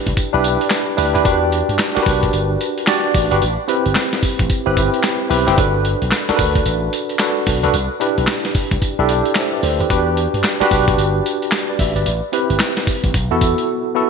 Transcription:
Already playing: tine electric piano D4 E4 G4 B4
0.06 slap bass C2, kick, closed hi-hat
0.17 kick, closed hi-hat, tambourine
0.33 slap bass B1, tine electric piano D4 E4 G4 B4
0.44 closed hi-hat, tambourine
0.61 closed hi-hat
0.70 snare, clap, closed hi-hat, tambourine
0.97 slap bass D2, tine electric piano D4 E4 G4 B4, open hi-hat, tambourine
1.14 slap bass D2, tine electric piano D4 E4 G4 B4, closed hi-hat
1.24 slap bass E2, tine electric piano D4 F#4 G4 A#4, kick, closed hi-hat, tambourine
1.32 tine electric piano B4
1.52 closed hi-hat
1.69 slap bass G2, closed hi-hat
1.79 snare, clap, closed hi-hat, tambourine
1.95 tine electric piano D4 F#4 G4 A#4, muted slap bass stroke, snare
2.03 slap bass B1, tine electric piano B4, kick, open hi-hat, tambourine
2.23 kick, closed hi-hat
2.33 slap bass G1, closed hi-hat, tambourine
2.61 closed hi-hat, tambourine
2.78 closed hi-hat
2.87 tine electric piano D4 F#4 G4 D5, snare, clap, closed hi-hat, tambourine
3.14 slap bass A1, kick, open hi-hat, tambourine
3.31 slap bass G1, tine electric piano D4 F#4 G4 B4, closed hi-hat
3.42 slap bass A1, closed hi-hat, tambourine
3.68 tine electric piano C4 E4 G4 B4, closed hi-hat
3.86 slap bass G1, closed hi-hat
3.95 snare, clap, closed hi-hat, tambourine
4.13 snare
4.23 muted slap bass stroke, kick, open hi-hat, tambourine
4.39 slap bass A1, kick, closed hi-hat
4.50 muted slap bass stroke, kick, closed hi-hat, tambourine
4.66 slap bass G1, tine electric piano C4 E4 G4 B4
4.77 kick, closed hi-hat, tambourine
4.94 closed hi-hat
5.03 snare, clap, closed hi-hat, tambourine
5.29 slap bass B1, tine electric piano C4 E4 G4 B4, open hi-hat, tambourine
5.47 slap bass F#1, tine electric piano C4 E4 G4 C5, snare, closed hi-hat
5.57 slap bass G1, tine electric piano D4 F#4 A4 B4, kick, closed hi-hat, tambourine
5.85 closed hi-hat
6.02 slap bass B1, closed hi-hat
6.11 snare, clap, closed hi-hat, tambourine
6.29 tine electric piano D4 F#4 A4 A#4, muted slap bass stroke, snare
6.36 slap bass D2, tine electric piano B4, kick, open hi-hat, tambourine
6.55 kick, closed hi-hat
6.66 slap bass A1, closed hi-hat, tambourine
6.93 closed hi-hat, tambourine
7.09 closed hi-hat
7.19 tine electric piano D4 F#4 A4 B4, snare, clap, closed hi-hat, tambourine
7.46 slap bass B1, kick, open hi-hat, tambourine
7.63 slap bass B1, tine electric piano D4 F#4 A4 B4, closed hi-hat
7.74 slap bass C2, closed hi-hat, tambourine
8.00 tine electric piano D4 E4 G4 B4, closed hi-hat
8.18 slap bass B1, closed hi-hat
8.27 snare, clap, closed hi-hat, tambourine
8.45 snare
8.55 muted slap bass stroke, kick, open hi-hat, tambourine
8.71 slap bass C2, kick, closed hi-hat
8.82 kick, closed hi-hat, tambourine
8.99 slap bass B1, tine electric piano D4 E4 G4 A4
9.09 tine electric piano E5 G5, closed hi-hat, tambourine
9.25 closed hi-hat
9.35 tine electric piano C5 E5, snare, clap, closed hi-hat, tambourine
9.54 tine electric piano B4 D5
9.63 slap bass D2, tine electric piano A4 C5, open hi-hat, tambourine
9.80 slap bass D2, tine electric piano G4 B4, closed hi-hat
9.90 slap bass E2, tine electric piano D4 F#4 G4 B4, kick, closed hi-hat, tambourine
10.17 closed hi-hat
10.34 slap bass G2, closed hi-hat
10.43 snare, clap, closed hi-hat, tambourine
10.60 tine electric piano D4 F#4 G4 B4, muted slap bass stroke, snare
10.71 slap bass B1, kick, open hi-hat, tambourine
10.88 kick, closed hi-hat
10.97 slap bass G1, closed hi-hat, tambourine
11.26 closed hi-hat, tambourine
11.42 closed hi-hat
11.51 snare, clap, closed hi-hat, tambourine
11.69 tine electric piano B4 D5
11.79 slap bass A1, tine electric piano E5, kick, open hi-hat, tambourine
11.95 slap bass G1, tine electric piano B4 D5, closed hi-hat
12.06 slap bass A1, closed hi-hat, tambourine
12.32 tine electric piano C4 E4 G4 B4, closed hi-hat
12.50 slap bass G1, closed hi-hat
12.59 snare, clap, closed hi-hat, tambourine
12.77 snare
12.87 muted slap bass stroke, kick, open hi-hat, tambourine
13.04 slap bass A1, kick, closed hi-hat
13.14 slap bass B1, kick, closed hi-hat, tambourine
13.31 slap bass E2, tine electric piano B3 E4 F#4 A4
13.41 kick, closed hi-hat, tambourine
13.58 closed hi-hat
13.95 tine electric piano B3 E4 F#4 A4

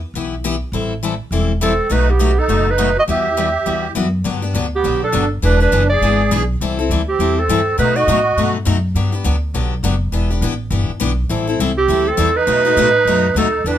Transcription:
0.14 upright bass B1, steel-string acoustic guitar E3 B3 E4 G4
0.44 steel-string acoustic guitar E3 B3 E4 G4
0.72 upright bass A1, steel-string acoustic guitar E3 G3 C4 E4 A4
1.03 steel-string acoustic guitar E3 G3 C4 E4 A4
1.31 upright bass E1, steel-string acoustic guitar E3 G3 C4 E4 A4
1.61 steel-string acoustic guitar E3 G3 C4 E4 A4, accordion C4, clarinet A4
1.90 upright bass B1, steel-string acoustic guitar B2 F#3 A3 D#4 F#4, accordion D#4, clarinet B4
2.09 accordion B3, clarinet G4
2.19 steel-string acoustic guitar B2 F#3 A3 D#4 F#4
2.38 accordion D#4, clarinet A4
2.48 upright bass F#1, steel-string acoustic guitar B2 F#3 A3 D#4 F#4
2.69 accordion D#4, clarinet B4
2.78 steel-string acoustic guitar B2 F#3 A3 D#4 F#4
2.97 accordion F#4, clarinet D#5
3.08 upright bass E2, steel-string acoustic guitar E3 G3 B3 F#4, accordion G4, clarinet E5
3.37 steel-string acoustic guitar E3 G3 B3 F#4
3.66 upright bass E2, steel-string acoustic guitar E3 G3 B3 F#4
3.95 upright bass F#2, steel-string acoustic guitar E3 G3 B3 F#4
4.24 upright bass G2, steel-string acoustic guitar D3 F#3 B3 D4 G4
4.42 steel-string acoustic guitar B3 D4 G4
4.54 upright bass D2, steel-string acoustic guitar D3 F#3 B3 D4 G4
4.75 accordion B3, clarinet G4
4.84 upright bass B1, steel-string acoustic guitar D3 F#3 B3 D4 G4
5.02 accordion D4, clarinet A4
5.12 upright bass G1, steel-string acoustic guitar D3 F#3 B3 D4 G4
5.42 upright bass E1, steel-string acoustic guitar E3 B3 D4 G#4, accordion D4, clarinet B4
5.60 steel-string acoustic guitar B3 D4 G#4, accordion D4, clarinet B4
5.72 upright bass F#1, steel-string acoustic guitar E3 B3 D4 G#4
5.90 accordion G#4, clarinet D5
6.01 upright bass G#1, steel-string acoustic guitar E3 B3 D4 G#4
6.31 upright bass B1, steel-string acoustic guitar E3 B3 D4 G#4
6.61 upright bass C2, steel-string acoustic guitar E3 G3 C4 E4 A4
6.79 steel-string acoustic guitar C4 E4 A4
6.90 upright bass D2, steel-string acoustic guitar E3 G3 C4 E4 A4
7.09 accordion C4, clarinet G4
7.19 upright bass E2, steel-string acoustic guitar E3 G3 C4 E4 A4
7.35 accordion C4
7.39 clarinet A4
7.48 upright bass G2, steel-string acoustic guitar E3 G3 C4 E4 A4
7.78 steel-string acoustic guitar B2 F#3 A3 D#4 F#4, upright bass B2, accordion D#4, clarinet B4
7.95 steel-string acoustic guitar A3 D#4 F#4, accordion F#4, clarinet D#5
8.07 upright bass A2, steel-string acoustic guitar B2 F#3 A3 D#4 F#4
8.37 upright bass G2, steel-string acoustic guitar B2 F#3 A3 D#4 F#4
8.65 upright bass F#2, steel-string acoustic guitar B2 F#3 A3 D#4 F#4
8.95 upright bass G2, steel-string acoustic guitar D3 F#3 B3 D4 G4
9.12 steel-string acoustic guitar B3 D4 G4
9.24 upright bass D2, steel-string acoustic guitar D3 F#3 B3 D4 G4
9.54 upright bass B1, steel-string acoustic guitar D3 F#3 B3 D4 G4
9.83 upright bass F#1, steel-string acoustic guitar D3 F#3 B3 D4 G4
10.12 upright bass E1, steel-string acoustic guitar E3 B3 D4 G4
10.30 steel-string acoustic guitar B3 D4 G4
10.41 upright bass A1, steel-string acoustic guitar E3 B3 D4 G4
10.70 upright bass G1, steel-string acoustic guitar E3 B3 D4 G4
10.88 muted upright bass stroke
11.00 upright bass B1, steel-string acoustic guitar E3 B3 D4 G4
11.29 upright bass A1, steel-string acoustic guitar E3 G3 C4 E4 A4
11.47 steel-string acoustic guitar C4 E4 A4
11.59 upright bass C2, steel-string acoustic guitar E3 G3 C4 E4 A4
11.76 accordion C4, clarinet G4
11.88 upright bass D2, steel-string acoustic guitar E3 G3 C4 E4 A4
12.07 accordion C4, clarinet A4
12.17 upright bass E2, steel-string acoustic guitar E3 G3 C4 E4 A4
12.35 accordion D#4, clarinet B4
12.47 steel-string acoustic guitar B2 F#3 A3 D#4 F#4, upright bass B2
12.65 steel-string acoustic guitar A3 D#4 F#4
12.76 upright bass A2, steel-string acoustic guitar B2 F#3 A3 D#4 F#4
13.05 upright bass F#2, steel-string acoustic guitar B2 F#3 A3 D#4 F#4
13.34 upright bass D#2, steel-string acoustic guitar B2 F#3 A3 D#4 F#4, accordion D#4, clarinet A4
13.64 upright bass E2, steel-string acoustic guitar E3 B3 D4 G4, accordion D4, clarinet B4

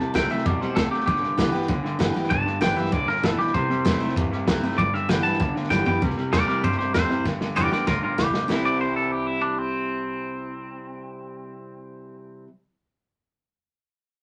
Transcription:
Already playing: steel-string acoustic guitar C3, clean electric guitar A5
0.00 clean electric guitar C3 G3
0.14 upright bass C2, clean electric guitar C3 A3 G5, steel-string acoustic guitar E3 G3 C4 E4, kick, snare, hi-hat pedal
0.30 clean electric guitar C3 A3 E5, steel-string acoustic guitar C4 E4, snare
0.38 snare
0.45 upright bass F2, steel-string acoustic guitar B2, clean electric guitar C3 G3 D5, kick, snare
0.61 clean electric guitar C3 G3 C5, muted upright bass stroke, snare
0.76 upright bass C2, steel-string acoustic guitar A2, clean electric guitar C3 A3 A4, kick, snare, hi-hat pedal
0.91 clean electric guitar C3 A3 G4, snare
1.00 snare
1.06 upright bass G1, clean electric guitar G2 D3 G4, steel-string acoustic guitar G2, kick, snare
1.16 snare
1.22 upright bass C2, clean electric guitar G2 D3, snare
1.37 upright bass B1, clean electric guitar G2 E3, steel-string acoustic guitar D3 G3 B3 G4, kick, snare, hi-hat pedal
1.52 clean electric guitar G2 E3, steel-string acoustic guitar B3 G4, muted upright bass stroke, snare
1.62 snare
1.68 upright bass B1, clean electric guitar G2 D3, steel-string acoustic guitar D3, kick, snare
1.84 clean electric guitar G2 D3, snare
1.99 upright bass G1, clean electric guitar G2 E3, steel-string acoustic guitar D3 G3 B3 G4, kick, snare, hi-hat pedal
2.14 clean electric guitar G2 E3, steel-string acoustic guitar B3 G4, snare
2.23 snare
2.30 upright bass B1, clean electric guitar G2 D3 A5, steel-string acoustic guitar G2, kick, snare
2.46 clean electric guitar G2 D3, snare
2.61 upright bass G1, clean electric guitar G2 E3 G5, steel-string acoustic guitar D3 G3 B3 G4, kick, snare, hi-hat pedal
2.76 clean electric guitar G2 E3 E5, steel-string acoustic guitar B3 G4, muted upright bass stroke, snare
2.85 snare
2.92 upright bass C2, clean electric guitar G2 D3 D5, steel-string acoustic guitar A2, kick, snare
3.08 clean electric guitar G2 D3 A#4, muted upright bass stroke, snare
3.16 snare
3.23 upright bass G1, clean electric guitar G2 E3 A4, steel-string acoustic guitar B2, kick, snare, hi-hat pedal
3.39 clean electric guitar G2 E3 G4, snare
3.47 snare
3.54 upright bass C2, steel-string acoustic guitar C3, clean electric guitar C3 G3 C5, kick, snare
3.70 upright bass F2, clean electric guitar C3 G3, snare
3.85 upright bass E2, clean electric guitar C3 A3, steel-string acoustic guitar E3 G3 C4 E4, kick, snare, hi-hat pedal
4.00 clean electric guitar C3 A3, steel-string acoustic guitar C4 E4, snare
4.09 snare
4.16 upright bass E2, steel-string acoustic guitar G2, clean electric guitar C3 G3, kick, snare
4.32 clean electric guitar C3 G3, snare
4.47 upright bass C2, clean electric guitar C3 A3, steel-string acoustic guitar E3 G3 C4 E4, kick, snare, hi-hat pedal
4.63 clean electric guitar C3 A3, steel-string acoustic guitar C4 E4, snare
4.71 snare
4.78 upright bass G1, clean electric guitar G2 D3 D5, steel-string acoustic guitar G2, kick, snare
4.93 clean electric guitar G2 D3 E5, muted upright bass stroke, snare
5.09 upright bass G1, clean electric guitar G2 E3 G5, steel-string acoustic guitar D3 G3 B3 G4, kick, snare, hi-hat pedal
5.23 clean electric guitar G2 E3 A5, steel-string acoustic guitar B3 G4, muted upright bass stroke, snare
5.33 snare
5.40 upright bass C2, clean electric guitar G2 D3, steel-string acoustic guitar D3, kick, snare
5.55 clean electric guitar G2 D3, muted upright bass stroke, snare
5.63 snare
5.70 upright bass G1, clean electric guitar G2 E3 G5, steel-string acoustic guitar D3 G3 B3 G4, kick, snare, hi-hat pedal
5.85 clean electric guitar G2 E3 G5, steel-string acoustic guitar B3 G4, muted upright bass stroke, floor tom
6.02 upright bass C2, steel-string acoustic guitar C3, clean electric guitar C3 G3, kick, snare
6.10 snare
6.18 clean electric guitar C3 G3, snare
6.32 upright bass E2, clean electric guitar C3 A3 A#4 D5, steel-string acoustic guitar E3 G3 C4 E4, snare, hi-hat pedal
6.47 clean electric guitar C3 G3 A#4 D5, snare
6.63 upright bass G2, steel-string acoustic guitar G2, clean electric guitar C3 G3 G4 C5, kick, snare
6.72 snare
6.78 clean electric guitar C3 G3 G4 C5, snare
6.94 upright bass E2, clean electric guitar C3 A3 C5, steel-string acoustic guitar E3 G3 C4 E4, snare, hi-hat pedal
7.10 clean electric guitar C3 G3, steel-string acoustic guitar C4 E4, snare
7.25 upright bass G1, clean electric guitar G2 D3, steel-string acoustic guitar G2, kick, snare
7.41 upright bass B1, clean electric guitar G2 D3, snare
7.56 upright bass F1, clean electric guitar G2 E3 A#4 D5, steel-string acoustic guitar D3 G3 B3 G4, hi-hat pedal
7.71 clean electric guitar G2 D3 A#4 D5, steel-string acoustic guitar B3 G4, muted upright bass stroke, snare
7.87 upright bass B1, clean electric guitar G2 D3 F4 A#4, steel-string acoustic guitar A2, kick, snare
8.03 clean electric guitar G2 D3 F4 A#4, muted upright bass stroke
8.18 upright bass B1, clean electric guitar G2 E3 G4, steel-string acoustic guitar B2, snare, hi-hat pedal
8.34 clean electric guitar G2 D3, muted upright bass stroke, snare
8.48 upright bass C2, steel-string acoustic guitar C3 E3 G3 C4 E4, clean electric guitar C3 G3 C4, snare
8.52 clean electric guitar E4
8.65 clean electric guitar D5
8.81 clean electric guitar C5
8.96 clean electric guitar A4
9.12 clean electric guitar G4
9.27 clean electric guitar E4
9.42 clean electric guitar D4
9.58 clean electric guitar C4

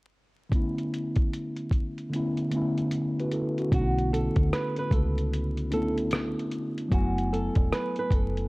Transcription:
0.49 tine electric piano D3 A3 B3, kick, closed hi-hat
0.54 tine electric piano C#4 E4
0.78 closed hi-hat
0.94 closed hi-hat
1.16 kick, closed hi-hat
1.33 closed hi-hat
1.56 closed hi-hat
1.71 kick, closed hi-hat
1.98 closed hi-hat
2.10 tine electric piano D3 A3 B3, closed hi-hat
2.14 tine electric piano C#4 E4
2.37 closed hi-hat
2.50 tine electric piano D3 A3 B3, closed hi-hat
2.55 tine electric piano C#4 E4
2.78 closed hi-hat
2.91 closed hi-hat
3.19 tine electric piano F#4 B4, closed hi-hat
3.31 tine electric piano E4 A4, closed hi-hat
3.58 tine electric piano C#4 F#4, closed hi-hat
3.69 fingered electric bass B1, tine electric piano D3 A3 B3, kick, closed hi-hat
3.73 tine electric piano C#4 D#4, nylon-string guitar F#4
3.81 tine electric piano E4
3.98 closed hi-hat
4.13 nylon-string guitar A4, closed hi-hat
4.36 fingered electric bass D2, kick, closed hi-hat
4.53 nylon-string guitar B4, cross-stick, closed hi-hat
4.76 nylon-string guitar B4, closed hi-hat
4.91 fingered electric bass C#2, nylon-string guitar A4, kick, closed hi-hat
5.18 closed hi-hat
5.33 closed hi-hat
5.57 closed hi-hat
5.71 tine electric piano A3 B3 D4, nylon-string guitar A4, closed hi-hat
5.75 tine electric piano C#4 E4
5.98 closed hi-hat
6.11 cross-stick, closed hi-hat
6.39 closed hi-hat
6.51 closed hi-hat
6.78 closed hi-hat
6.88 fingered electric bass F#1, tine electric piano F#3 A3 B3, kick, closed hi-hat
6.93 tine electric piano E4 G#5, nylon-string guitar F#4
7.18 closed hi-hat
7.33 nylon-string guitar A4, closed hi-hat
7.55 fingered electric bass E1, kick, closed hi-hat
7.73 nylon-string guitar B4, cross-stick, closed hi-hat
7.96 nylon-string guitar B4, closed hi-hat
8.11 fingered electric bass F#1, nylon-string guitar A4, kick, closed hi-hat
8.37 closed hi-hat

